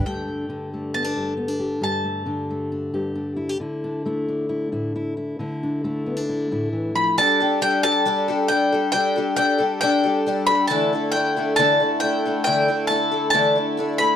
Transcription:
<<
  \new Staff \with { instrumentName = "Mandolin" } { \time 4/4 \key g \mixolydian \tempo 4 = 136 g''2 a''2 | a''2.~ a''8 r8 | r1 | r2. r8 b''8 |
a''4 g''8 a''4. g''4 | g''4 g''4 g''4. b''8 | a''4 g''4 a''4 g''4 | g''4 a''4 a''4. b''8 | }
  \new Staff \with { instrumentName = "Twelve-string acoustic guitar" } { \time 4/4 \key g \mixolydian r1 | r1 | r1 | r1 |
<g d' g' a'>8 <d' g' a'>8 <g d' g' a'>8 <d' g' a'>8 <g d' g' a'>8 <d' g' a'>8 <g d' g' a'>8 <d' g' a'>8 | <g d' g' a'>8 <d' g' a'>8 <g d' g' a'>8 <d' g' a'>8 <g d' g' a'>8 <d' g' a'>8 <g d' g' a'>8 <d' g' a'>8 | <d e a d' e' a'>8 <a d' e' a'>8 <a d' e' a'>8 <a d' e' a'>8 <d e a d' e' a'>8 <a d' e' a'>8 <a d' e' a'>8 <a d' e' a'>8 | <d e a d' e' a'>8 <a d' e' a'>8 <a d' e' a'>8 <a d' e' a'>8 <d e a d' e' a'>8 <a d' e' a'>8 <a d' e' a'>8 <a d' e' a'>8 | }
  \new Staff \with { instrumentName = "Steel-string acoustic guitar" } { \time 4/4 \key g \mixolydian << { <d a d' g'>8 a8 d'8 a8 b16 d'16 g'8 b16 d'16 g'8 | g'8 a8 d'8 a8 d'8 g'8 d'8 e'16 g'16 | e'8 d'8 e'8 d'8 e'8 e'8 e'8 e'8 | e'8 d'8 e'8 b16 d'16 e'8 e'4. |
r1 | r1 | r1 | r1 | } \\ { g,4 d4. g,4. | g,4 d4. g,4. | d4 a4. a,4. | d4 a4. a,8 e8 f8 |
r1 | r1 | r1 | r1 | } >> }
  \new Staff \with { instrumentName = "Harmonium" } { \time 4/4 \key g \mixolydian r1 | r1 | r1 | r1 |
<g d' a'>1~ | <g d' a'>1 | <d a e'>1~ | <d a e'>1 | }
>>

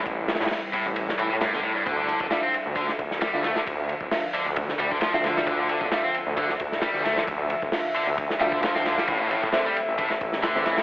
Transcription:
<<
  \new Staff \with { instrumentName = "Grand piano" } { \time 4/4 \key d \minor \tempo 4 = 133 r1 | r4 <d' f' e''>16 r2 <d' f' e''>16 r8 | r4 <d' f' e''>16 r2 <d' f' e''>8.~ | <d' f' e''>4 <d' f' e''>16 r2 r8. |
r4 <d' f' e''>16 r4 r16 <d' f' e''>4. | r4 <c' a' e''>16 r2 <c' a' e''>16 r8 | }
  \new Staff \with { instrumentName = "Ambient pad" } { \clef bass \time 4/4 \key d \minor << { e'1 | e''1~ | e''1~ | e''1~ |
e''1~ | e''1 | } \\ { <c g>1 | <d f>1~ | <d f>1~ | <d f>1~ |
<d f>1 | <c a>1 | } >> }
  \new Staff \with { instrumentName = "Distorted electric guitar" } { \clef bass \time 4/4 \key d \minor r4. a,16 r8. e16 a,16 g,16 d16 a,16 g,16 | d16 d16 d16 d16 g16 c'16 r8 d16 r8. g8 a16 d16 | r4. d16 r8. g16 d16 f16 c'16 d16 g16 | d16 d16 d16 d16 g16 c'16 r8 d16 r8. g8 a16 d16 |
r4. d16 r8. g16 d16 f16 c'16 d16 g16 | a,16 a,16 a,16 a,16 d16 g16 r8 a,16 r8. d8 e16 a,16 | }
  \new Staff \with { instrumentName = "Detuned saw bass" } { \clef bass \time 4/4 \key d \minor a,,8 r16 a,16 r8. a,,8 r16 a,8 r16 g,,16 r8 | d,8 r16 d,,16 r8. d,8 r16 d,8 r16 d,8 r16 | d,8 r16 d,,16 r8. d,8 r16 d,8 r16 d,8 r16 | d,8 r16 d,,16 r8. d,8 r16 d,8 r16 d,8 r16 |
d,8 r16 d,,16 r8. d,8 r16 d,8 r16 d,8 r16 | a,,8 r16 a,16 r8. a,,8 r16 a,,8 r16 a,,8 r16 | }
  \new DrumStaff \with { instrumentName = "Drums" } \drummode { \time 4/4 <bd cymr>8 <cymr sn>32 <cymr sn>32 <cymr sn>32 <cymr sn>32 <hho sn>8 cymr8 cymr16 sn16 cymr8 <cymr sn>16 sn8. | <bd cymr>8 cymr16 bd16 <cymr sn>8 cymr8 <bd cymr>16 sn16 <bd cymr>16 sn16 <cymr sn>16 sn16 <cymr sn>16 sn16 | <bd cymr>8 cymr16 bd16 <hho sn>8 cymr8 <bd cymr>16 sn16 cymr16 bd16 <cymr sn>16 sn16 <cymr sn>16 sn16 | <bd cymr>8 cymr16 bd16 <cymr sn>8 cymr8 <bd cymr>16 sn16 <bd cymr>16 sn16 <cymr sn>16 sn16 <cymr sn>16 sn16 |
<bd cymr>8 cymr16 bd16 <hho sn>8 cymr8 <bd cymr>16 sn16 cymr16 bd16 <cymr sn>16 sn16 <cymr sn>16 sn16 | <bd cymr>8 cymr16 bd16 <cymr sn>8 cymr8 <bd cymr>16 sn16 <bd cymr>16 sn16 <cymr sn>16 sn16 <cymr sn>16 sn16 | }
>>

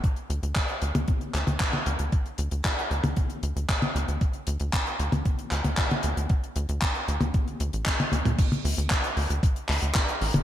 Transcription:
<<
  \new Staff \with { instrumentName = "Analog synth bass" } { \clef bass \time 4/4 \key d \major \tempo 4 = 115 r8 d,16 d,16 r8 d,16 d,16 r8 d,16 d,16 r8 d,16 d,16 | r8 d,16 d,16 r8 d,16 d,16 r8 d,16 d,16 r8 d,16 d,16 | r8 d,16 d,16 r8 d,16 d,16 r8 d,16 d,16 r8 d,16 d,16 | r8 d,16 d,16 r8 d,16 d,16 r8 d,16 a,,16 r8 d,16 d,16 |
r8 d,16 d,16 r8 d,16 d,16 r8 d,16 d,16 r8 a,,16 d,,16 | }
  \new DrumStaff \with { instrumentName = "Drums" } \drummode { \time 4/4 <hh bd>16 hh16 hh16 hh16 <hc hh bd>16 hh16 hh16 <hh tommh>16 <hh bd>16 hh16 <hc hh>16 <hh tommh>16 <hc hh bd>16 <hh tommh>16 hh16 hh16 | <hh bd>16 hh16 hh16 hh16 <hc hh bd>16 hh16 hh16 <hh tommh>16 <hh bd>16 hh16 hh16 hh16 <hc hh bd>16 <hh tommh>16 hh16 hh16 | <hh bd>16 hh16 hh16 hh16 <hc hh bd>16 hh16 hh16 <hh tommh>16 <hh bd>16 hh16 <hc hh>16 <hh tommh>16 <hc hh bd>16 <hh tommh>16 hh16 hh16 | <hh bd>16 hh16 hh16 hh16 <hc hh bd>16 hh16 hh16 <hh tommh>16 <hh bd>16 hh16 hh16 hh16 <hc hh bd>16 <hh tommh>16 <hh tommh>16 <hh toml>16 |
<cymc hh bd>16 <hh tommh>16 hho16 hh16 <hc hh bd>16 hh16 hho16 hh16 <hh bd>16 hh16 <hc hho>16 hh16 <hc hh bd>16 hh16 hho16 <hh tommh>16 | }
>>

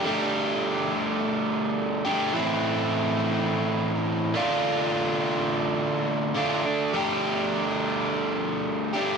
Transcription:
\new Staff \with { instrumentName = "Overdriven electric guitar" } { \time 4/4 \key g \mixolydian \tempo 4 = 105 <g a d' g'>2.~ <g a d' g'>8 <g a d' g'>8 | <a, e a c' e'>2.~ <a, e a c' e'>8 <d a d' f'>8~ | <d a d' f'>2. <d a d' f'>8 r8 | <g a d' g'>2.~ <g a d' g'>8 <g a d' g'>8 | }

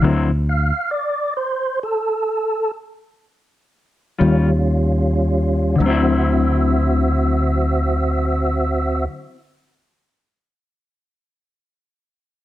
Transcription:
<<
  \new Staff \with { instrumentName = "Tonewheel organ" } { \time 12/8 \key d \mixolydian \tempo 4. = 36 r8 f''8 d''8 c''8 a'4 r4. <g des' f'>4. | <c' fis' e''>1. | }
  \new Staff \with { instrumentName = "Clean electric guitar" } { \time 12/8 \key d \mixolydian <d fis c' e'>8 r1 <ees g des' f'>8 r4 | <d fis c' e'>1. | }
  \new Staff \with { instrumentName = "Fingered electric bass" } { \clef bass \time 12/8 \key d \mixolydian d,4 r2. r8 ees,4. | d,1. | }
>>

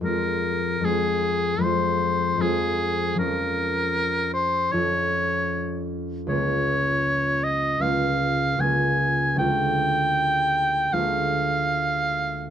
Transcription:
<<
  \new Staff \with { instrumentName = "Oboe" } { \time 4/4 \key bes \dorian \tempo 4 = 77 bes'4 aes'4 c''4 aes'4 | bes'4. c''8 des''4. r8 | des''4. ees''8 f''4 aes''4 | g''2 f''2 | }
  \new Staff \with { instrumentName = "Harp" } { \time 4/4 \key bes \dorian <f, aes c' f'>4 <f, aes c' f'>4 <f, aes c' f'>4 <f, aes c' f'>4 | <f, f des' f'>2 <f, f des' f'>2 | <des, aes bes f'>2 <des, aes bes f'>4 <des, aes bes f'>4 | <d, aes bes f'>2 <d, aes bes f'>2 | }
>>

